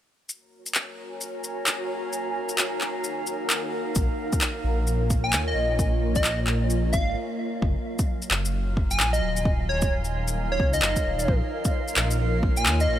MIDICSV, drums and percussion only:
0, 0, Header, 1, 2, 480
1, 0, Start_track
1, 0, Tempo, 458015
1, 310, Time_signature, 4, 2, 24, 8
1, 13616, End_track
2, 0, Start_track
2, 0, Title_t, "Drums"
2, 304, Note_on_c, 9, 82, 53
2, 409, Note_off_c, 9, 82, 0
2, 692, Note_on_c, 9, 82, 51
2, 782, Note_off_c, 9, 82, 0
2, 782, Note_on_c, 9, 39, 92
2, 782, Note_on_c, 9, 82, 50
2, 887, Note_off_c, 9, 39, 0
2, 887, Note_off_c, 9, 82, 0
2, 1266, Note_on_c, 9, 82, 51
2, 1370, Note_off_c, 9, 82, 0
2, 1508, Note_on_c, 9, 82, 52
2, 1613, Note_off_c, 9, 82, 0
2, 1744, Note_on_c, 9, 39, 97
2, 1744, Note_on_c, 9, 82, 56
2, 1849, Note_off_c, 9, 39, 0
2, 1849, Note_off_c, 9, 82, 0
2, 2228, Note_on_c, 9, 82, 52
2, 2333, Note_off_c, 9, 82, 0
2, 2608, Note_on_c, 9, 82, 51
2, 2707, Note_off_c, 9, 82, 0
2, 2707, Note_on_c, 9, 39, 98
2, 2707, Note_on_c, 9, 82, 54
2, 2812, Note_off_c, 9, 39, 0
2, 2812, Note_off_c, 9, 82, 0
2, 2944, Note_on_c, 9, 39, 57
2, 3048, Note_off_c, 9, 39, 0
2, 3185, Note_on_c, 9, 82, 52
2, 3289, Note_off_c, 9, 82, 0
2, 3424, Note_on_c, 9, 82, 53
2, 3529, Note_off_c, 9, 82, 0
2, 3667, Note_on_c, 9, 39, 100
2, 3667, Note_on_c, 9, 82, 55
2, 3772, Note_off_c, 9, 39, 0
2, 3772, Note_off_c, 9, 82, 0
2, 4140, Note_on_c, 9, 82, 55
2, 4149, Note_on_c, 9, 36, 113
2, 4245, Note_off_c, 9, 82, 0
2, 4254, Note_off_c, 9, 36, 0
2, 4531, Note_on_c, 9, 82, 55
2, 4535, Note_on_c, 9, 36, 106
2, 4623, Note_off_c, 9, 82, 0
2, 4623, Note_on_c, 9, 39, 100
2, 4623, Note_on_c, 9, 82, 52
2, 4640, Note_off_c, 9, 36, 0
2, 4728, Note_off_c, 9, 39, 0
2, 4728, Note_off_c, 9, 82, 0
2, 5104, Note_on_c, 9, 82, 52
2, 5209, Note_off_c, 9, 82, 0
2, 5345, Note_on_c, 9, 82, 54
2, 5348, Note_on_c, 9, 36, 95
2, 5450, Note_off_c, 9, 82, 0
2, 5453, Note_off_c, 9, 36, 0
2, 5585, Note_on_c, 9, 39, 104
2, 5585, Note_on_c, 9, 82, 56
2, 5690, Note_off_c, 9, 39, 0
2, 5690, Note_off_c, 9, 82, 0
2, 6066, Note_on_c, 9, 82, 52
2, 6067, Note_on_c, 9, 36, 112
2, 6171, Note_off_c, 9, 82, 0
2, 6172, Note_off_c, 9, 36, 0
2, 6448, Note_on_c, 9, 82, 50
2, 6454, Note_on_c, 9, 36, 103
2, 6541, Note_off_c, 9, 82, 0
2, 6541, Note_on_c, 9, 39, 99
2, 6541, Note_on_c, 9, 82, 50
2, 6559, Note_off_c, 9, 36, 0
2, 6646, Note_off_c, 9, 39, 0
2, 6646, Note_off_c, 9, 82, 0
2, 6780, Note_on_c, 9, 39, 60
2, 6884, Note_off_c, 9, 39, 0
2, 7020, Note_on_c, 9, 82, 52
2, 7125, Note_off_c, 9, 82, 0
2, 7262, Note_on_c, 9, 82, 54
2, 7269, Note_on_c, 9, 36, 103
2, 7367, Note_off_c, 9, 82, 0
2, 7374, Note_off_c, 9, 36, 0
2, 7989, Note_on_c, 9, 36, 108
2, 8093, Note_off_c, 9, 36, 0
2, 8370, Note_on_c, 9, 82, 53
2, 8374, Note_on_c, 9, 36, 105
2, 8475, Note_off_c, 9, 82, 0
2, 8479, Note_off_c, 9, 36, 0
2, 8614, Note_on_c, 9, 82, 30
2, 8709, Note_on_c, 9, 39, 100
2, 8719, Note_off_c, 9, 82, 0
2, 8813, Note_off_c, 9, 39, 0
2, 8859, Note_on_c, 9, 82, 58
2, 8963, Note_off_c, 9, 82, 0
2, 9190, Note_on_c, 9, 36, 94
2, 9294, Note_off_c, 9, 36, 0
2, 9335, Note_on_c, 9, 82, 56
2, 9430, Note_on_c, 9, 39, 99
2, 9440, Note_off_c, 9, 82, 0
2, 9535, Note_off_c, 9, 39, 0
2, 9577, Note_on_c, 9, 82, 44
2, 9682, Note_off_c, 9, 82, 0
2, 9813, Note_on_c, 9, 82, 53
2, 9908, Note_on_c, 9, 36, 112
2, 9918, Note_off_c, 9, 82, 0
2, 10013, Note_off_c, 9, 36, 0
2, 10287, Note_on_c, 9, 82, 54
2, 10294, Note_on_c, 9, 36, 105
2, 10391, Note_off_c, 9, 82, 0
2, 10399, Note_off_c, 9, 36, 0
2, 10529, Note_on_c, 9, 82, 31
2, 10634, Note_off_c, 9, 82, 0
2, 10769, Note_on_c, 9, 82, 59
2, 10873, Note_off_c, 9, 82, 0
2, 11106, Note_on_c, 9, 36, 100
2, 11211, Note_off_c, 9, 36, 0
2, 11249, Note_on_c, 9, 82, 55
2, 11340, Note_on_c, 9, 39, 108
2, 11353, Note_off_c, 9, 82, 0
2, 11445, Note_off_c, 9, 39, 0
2, 11488, Note_on_c, 9, 82, 43
2, 11491, Note_on_c, 9, 36, 62
2, 11592, Note_off_c, 9, 82, 0
2, 11596, Note_off_c, 9, 36, 0
2, 11729, Note_on_c, 9, 82, 53
2, 11825, Note_on_c, 9, 36, 113
2, 11834, Note_off_c, 9, 82, 0
2, 11929, Note_off_c, 9, 36, 0
2, 12207, Note_on_c, 9, 82, 56
2, 12211, Note_on_c, 9, 36, 104
2, 12311, Note_off_c, 9, 82, 0
2, 12316, Note_off_c, 9, 36, 0
2, 12448, Note_on_c, 9, 82, 30
2, 12540, Note_on_c, 9, 39, 105
2, 12553, Note_off_c, 9, 82, 0
2, 12645, Note_off_c, 9, 39, 0
2, 12687, Note_on_c, 9, 82, 56
2, 12792, Note_off_c, 9, 82, 0
2, 13026, Note_on_c, 9, 36, 104
2, 13131, Note_off_c, 9, 36, 0
2, 13170, Note_on_c, 9, 82, 54
2, 13265, Note_on_c, 9, 39, 110
2, 13275, Note_off_c, 9, 82, 0
2, 13370, Note_off_c, 9, 39, 0
2, 13415, Note_on_c, 9, 82, 44
2, 13520, Note_off_c, 9, 82, 0
2, 13616, End_track
0, 0, End_of_file